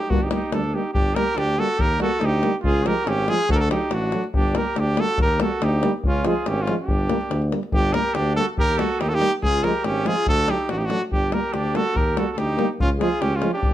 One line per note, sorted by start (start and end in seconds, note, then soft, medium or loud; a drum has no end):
0.00 0.14 D#4 medium
0.00 0.12 G4 medium
0.09 0.32 G1 medium
0.09 0.19 G3 medium
0.09 0.19 A#3 medium
0.09 0.26 D4 medium
0.09 0.24 F#4 medium
0.09 davul low loud
0.21 0.33 D#4 medium
0.21 0.31 G4 medium
0.21 davul high soft
0.31 0.41 G3 medium
0.31 0.40 A#3 medium
0.31 0.57 D#4 medium
0.31 0.54 G4 medium
0.31 davul high medium
0.42 davul high soft
0.52 0.75 D2 medium
0.52 0.62 G3 medium
0.52 0.61 A#3 soft
0.52 0.76 A4 medium
0.52 davul high medium
0.56 0.78 D4 medium
0.64 davul high soft
0.74 0.83 G3 medium
0.74 0.83 A#3 medium
0.74 0.94 D#4 medium
0.74 0.93 G4 medium
0.94 1.18 G1 medium
0.94 1.16 D4 medium
0.94 1.17 G4 medium
0.94 davul low medium
1.15 1.25 G3 medium
1.15 1.25 A#3 medium
1.15 1.37 G4 medium
1.15 1.39 A#4 medium
1.15 davul high medium
1.35 1.60 D2 medium
1.35 1.59 D4 medium
1.35 1.61 G4 loud
1.35 davul high medium
1.49 davul high soft
1.57 1.68 G3 medium
1.57 1.67 A#3 medium
1.57 1.79 F#4 medium
1.57 1.82 A4 loud
1.77 2.02 D#2 medium
1.77 2.00 G4 medium
1.77 2.01 A#4 loud
1.77 davul low medium
2.00 2.09 G3 medium
2.00 2.10 A#3 medium
2.00 2.21 F#4 medium
2.00 2.27 A4 medium
2.00 davul high medium
2.20 2.45 D2 medium
2.20 2.53 D#4 medium
2.20 davul high medium
2.25 2.56 G4 loud
2.32 davul high soft
2.43 2.53 G3 medium
2.43 2.52 A#3 medium
2.43 davul high medium
2.62 2.87 C#2 loud
2.62 2.86 F4 medium
2.62 2.88 G#4 medium
2.62 davul low medium
2.85 2.94 F3 medium
2.85 2.95 G#3 medium
2.85 3.07 G4 medium
2.85 3.10 A#4 medium
2.85 davul high medium
3.05 3.30 G#1 medium
3.05 3.28 C#4 medium
3.05 3.31 G4 loud
3.05 davul high medium
3.18 davul high soft
3.27 3.38 F3 medium
3.27 3.37 G#3 medium
3.27 3.47 F4 medium
3.27 3.50 G#4 loud
3.27 davul high medium
3.48 3.72 D2 medium
3.48 3.57 F#4 medium
3.48 3.56 A4 loud
3.48 davul low medium
3.55 3.62 G4 medium
3.55 3.69 A4 loud
3.55 3.60 A#4 medium
3.60 3.70 F#4 medium
3.60 davul high soft
3.71 3.80 F#3 medium
3.71 3.79 A3 medium
3.71 3.94 D#4 medium
3.71 3.95 G4 medium
3.71 davul high medium
3.81 davul high soft
3.91 4.14 A1 medium
3.91 4.24 D4 medium
3.91 4.25 F#4 loud
3.91 davul high medium
4.02 davul high soft
4.12 4.21 F#3 medium
4.12 4.21 A3 medium
4.12 davul high medium
4.24 davul high soft
4.34 4.57 G1 medium
4.34 4.60 D4 medium
4.34 4.57 G4 medium
4.34 davul low loud
4.55 4.64 G3 medium
4.55 4.64 A#3 medium
4.55 4.81 G4 medium
4.55 4.81 A#4 medium
4.55 davul high medium
4.76 5.00 D2 medium
4.76 5.02 D4 medium
4.76 5.02 G4 medium
4.76 davul high medium
4.87 davul high soft
4.97 5.07 G3 medium
4.97 5.06 A#3 medium
4.97 5.20 F#4 medium
4.97 5.20 A4 loud
4.97 davul high medium
5.18 5.42 D#2 medium
5.18 5.40 A#4 loud
5.18 davul low loud
5.23 5.41 G4 medium
5.39 5.50 G3 medium
5.39 5.48 A#3 medium
5.39 5.65 F#4 medium
5.39 5.65 A4 medium
5.39 davul high medium
5.62 5.85 D2 medium
5.62 5.95 D#4 medium
5.62 5.95 G4 loud
5.62 davul high medium
5.73 davul high soft
5.83 5.92 G3 medium
5.83 5.92 A#3 medium
5.83 davul high medium
6.04 6.27 C#2 medium
6.04 6.28 C#4 medium
6.04 6.29 F4 medium
6.04 davul low medium
6.25 6.34 F3 medium
6.25 6.34 G#3 medium
6.25 6.50 F4 medium
6.25 6.49 G#4 medium
6.25 davul high medium
6.46 6.70 G#1 medium
6.46 6.63 C#4 medium
6.46 6.63 G4 medium
6.46 davul high medium
6.58 6.75 F4 medium
6.58 davul high soft
6.63 6.76 C#4 medium
6.67 6.76 F3 medium
6.67 6.76 G#3 medium
6.67 davul high medium
6.81 7.49 D4 medium
6.81 7.49 G4 medium
6.88 7.11 G1 medium
6.88 davul low medium
7.00 davul high soft
7.09 7.19 G3 medium
7.09 7.18 A#3 medium
7.09 davul high medium
7.21 davul high soft
7.30 7.54 D2 medium
7.30 davul high medium
7.42 davul high soft
7.51 7.61 G3 medium
7.51 7.59 A#3 medium
7.51 davul high medium
7.63 davul high soft
7.72 7.96 G1 loud
7.72 7.96 D4 medium
7.72 7.95 G4 loud
7.72 davul low medium
7.93 8.03 G3 medium
7.93 8.03 A#3 medium
7.93 8.18 G4 medium
7.93 8.16 A#4 medium
7.93 davul high medium
8.15 8.39 D2 medium
8.15 8.37 D4 medium
8.15 8.35 G4 medium
8.15 davul high medium
8.27 davul high soft
8.36 8.45 G3 medium
8.36 8.46 A#3 medium
8.36 8.48 F#4 medium
8.36 8.46 A4 loud
8.58 8.81 D#2 medium
8.58 8.81 G4 loud
8.58 8.79 A#4 loud
8.58 davul low loud
8.78 8.87 G3 medium
8.78 8.88 A#3 medium
8.78 9.03 F#4 loud
8.78 9.01 A4 medium
8.78 davul high medium
9.00 9.23 D#2 medium
9.00 9.11 D#4 medium
9.00 9.10 G4 medium
9.00 davul high medium
9.09 9.17 F#4 medium
9.09 9.16 A4 medium
9.09 davul high soft
9.15 9.33 D#4 medium
9.15 9.32 G4 loud
9.20 9.29 G3 medium
9.20 9.29 A#3 medium
9.20 davul high medium
9.42 9.65 C#2 medium
9.42 9.68 F4 medium
9.42 9.65 G#4 loud
9.42 davul low medium
9.63 9.72 F3 medium
9.63 9.73 G#3 medium
9.63 9.87 G4 medium
9.63 9.86 A#4 loud
9.63 davul high medium
9.84 10.08 G#1 medium
9.84 10.08 C#4 medium
9.84 10.09 G4 loud
9.84 davul high medium
10.05 10.14 F3 medium
10.05 10.15 G#3 medium
10.05 10.27 F4 medium
10.05 10.27 G#4 loud
10.05 davul high medium
10.27 10.50 D2 loud
10.27 10.51 F#4 medium
10.27 10.52 A4 loud
10.27 davul low medium
10.38 davul high soft
10.48 10.56 F#3 medium
10.48 10.57 A3 medium
10.48 10.71 D#4 medium
10.48 10.72 G4 medium
10.48 davul high medium
10.59 davul high soft
10.69 10.93 A1 medium
10.69 10.79 D4 medium
10.69 10.80 F#4 medium
10.69 davul high medium
10.77 10.87 D#4 medium
10.77 10.87 G4 medium
10.77 davul high soft
10.85 11.02 D4 medium
10.85 11.02 F#4 loud
10.90 10.98 F#3 medium
10.90 10.99 A3 medium
10.90 davul high medium
11.02 davul high soft
11.11 11.34 G1 medium
11.11 11.35 D4 medium
11.11 11.35 G4 medium
11.11 davul low medium
11.32 11.40 G3 medium
11.32 11.41 A#3 medium
11.32 11.56 G4 medium
11.32 11.54 A#4 medium
11.32 davul high medium
11.53 11.77 D2 medium
11.53 11.78 D4 medium
11.53 11.77 G4 medium
11.53 davul high medium
11.65 davul high soft
11.74 11.83 G3 medium
11.74 11.83 A#3 medium
11.74 11.99 F#4 medium
11.74 11.98 A4 loud
11.74 davul high medium
11.95 12.18 D#2 medium
11.95 12.20 G4 medium
11.95 12.19 A#4 medium
11.95 davul low medium
12.16 12.26 G3 medium
12.16 12.24 A#3 medium
12.16 12.32 F#4 medium
12.16 12.31 A4 medium
12.16 davul high medium
12.31 12.40 F#4 soft
12.31 12.40 A4 medium
12.37 12.60 D2 medium
12.37 12.70 D#4 medium
12.37 12.70 G4 loud
12.37 davul high medium
12.49 davul high soft
12.58 12.67 G3 medium
12.58 12.66 A#3 medium
12.58 davul high medium
12.80 13.03 C#2 medium
12.80 12.90 C#4 medium
12.80 12.90 F4 loud
12.80 davul low loud
12.99 13.09 F3 medium
12.99 13.07 G#3 medium
12.99 13.23 F4 medium
12.99 13.23 G#4 medium
12.99 davul high medium
13.21 13.44 C#2 loud
13.21 13.35 C#4 medium
13.21 13.37 G4 medium
13.21 davul high medium
13.33 13.50 C#4 medium
13.33 13.50 F4 medium
13.33 davul high soft
13.41 13.51 F3 medium
13.41 13.49 G#3 medium
13.41 davul high medium
13.53 13.74 D4 medium
13.53 13.74 G4 medium
13.63 13.74 G1 medium
13.63 davul low loud